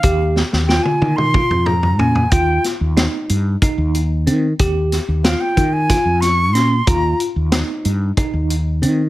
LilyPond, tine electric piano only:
\new Staff \with { instrumentName = "Tine electric piano" } { \time 7/8 \key des \lydian \tempo 4 = 92 g'4 f'4 f'4 des'8 | f'4 ees'4 ees'4 c'8 | g'4 f'4 f'4 des'8 | f'4 ees'4 ees'4 c'8 | }